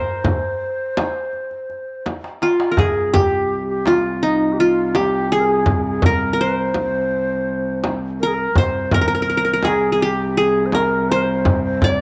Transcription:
Already playing: qanun A#4 C5, ney C5
0.24 darbuka dum, frame drum
0.97 darbuka tek, frame drum
1.33 darbuka ka
1.51 darbuka ka
1.70 darbuka ka
2.06 darbuka tek, frame drum
2.24 darbuka ka
2.42 ney F4, qanun F4, darbuka tek
2.60 darbuka ka
2.71 qanun A#4
2.77 cello C2, qanun G#4, ney G#4, darbuka dum, frame drum
3.14 qanun G4, ney G4, darbuka dum, frame drum
3.68 ney G4
3.86 ney F4, qanun F4, darbuka tek, frame drum
4.23 qanun D#4, ney D#4, darbuka ka
4.41 darbuka ka
4.53 ney G4
4.59 ney F4, qanun F4
4.95 qanun G4, ney G4, darbuka tek, frame drum
5.32 qanun G#4, ney G#4
5.40 ney A#4
5.46 ney G#4, darbuka ka
5.66 frame drum, darbuka dum
5.86 ney G#4
6.02 ney A#4, qanun A#4, frame drum, darbuka dum
6.33 qanun A#4
6.40 ney C5, qanun C5
6.74 frame drum
7.11 darbuka ka
7.30 darbuka ka
7.84 darbuka tek, frame drum
8.20 ney A#4, qanun A#4
8.27 ney G#4
8.34 ney A#4, darbuka ka
8.55 cello C2, ney C5, qanun C5, frame drum, darbuka dum
8.91 ney A#4, qanun A#4, frame drum, darbuka dum
9.01 qanun A#4
9.08 qanun A#4
9.15 qanun A#4
9.22 qanun A#4
9.30 qanun A#4
9.37 qanun A#4
9.45 qanun A#4
9.53 qanun A#4
9.63 qanun G#4, ney G#4, darbuka tek, frame drum
9.92 qanun G#4, ney G#4
10.00 ney G4, qanun G4, darbuka ka
10.19 darbuka ka
10.37 qanun G#4, ney G#4
10.66 ney C5
10.72 ney A#4, qanun A#4, darbuka tek, frame drum
11.10 ney C5, qanun C5
11.15 ney A#4
11.23 ney C5
11.28 darbuka ka
11.45 frame drum, darbuka dum
11.64 ney C5
11.82 ney D5, qanun D5, frame drum, darbuka dum

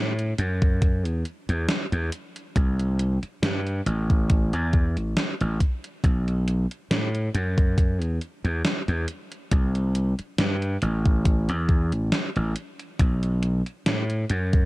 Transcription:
Already playing: slap bass A2
0.19 closed hi-hat
0.38 slap bass F#2, closed hi-hat
0.62 kick, closed hi-hat
0.82 kick, closed hi-hat
1.05 slap bass E2, closed hi-hat
1.25 closed hi-hat
1.49 slap bass E2, closed hi-hat
1.69 snare, closed hi-hat
1.92 slap bass E2, closed hi-hat
2.12 closed hi-hat
2.36 closed hi-hat
2.56 slap bass C2, kick, closed hi-hat
2.79 closed hi-hat
2.99 closed hi-hat
3.23 muted slap bass stroke, closed hi-hat
3.42 slap bass G2, snare, closed hi-hat
3.67 closed hi-hat
3.86 slap bass A1, closed hi-hat
4.10 kick, closed hi-hat
4.30 kick, closed hi-hat
4.53 slap bass E2, closed hi-hat
4.73 kick, closed hi-hat
4.97 slap bass A1, closed hi-hat
5.17 snare, closed hi-hat
5.41 slap bass A1, closed hi-hat
5.60 kick, closed hi-hat
5.84 closed hi-hat
6.04 slap bass B1, kick, closed hi-hat
6.28 closed hi-hat
6.48 closed hi-hat
6.71 closed hi-hat
6.91 slap bass A2, snare, closed hi-hat
7.15 closed hi-hat
7.34 slap bass F#2, closed hi-hat
7.58 kick, closed hi-hat
7.78 kick, closed hi-hat
8.01 slap bass E2, closed hi-hat
8.21 closed hi-hat
8.44 slap bass E2, closed hi-hat
8.65 snare, closed hi-hat
8.88 slap bass E2, closed hi-hat
9.08 closed hi-hat
9.32 closed hi-hat
9.51 slap bass C2, kick, closed hi-hat
9.75 closed hi-hat
9.95 closed hi-hat
10.19 muted slap bass stroke, closed hi-hat
10.38 slap bass G2, snare, closed hi-hat
10.62 closed hi-hat
10.82 slap bass A1, closed hi-hat
11.06 kick, closed hi-hat
11.25 kick, closed hi-hat
11.49 slap bass E2, closed hi-hat
11.69 kick, closed hi-hat
11.92 slap bass A1, closed hi-hat
12.12 snare, closed hi-hat
12.36 slap bass A1, closed hi-hat
12.56 closed hi-hat
12.80 closed hi-hat
12.99 slap bass B1, kick, closed hi-hat
13.23 closed hi-hat
13.43 closed hi-hat
13.66 closed hi-hat
13.86 slap bass A2, snare, closed hi-hat
14.10 closed hi-hat
14.30 slap bass F#2, closed hi-hat
14.53 kick, closed hi-hat

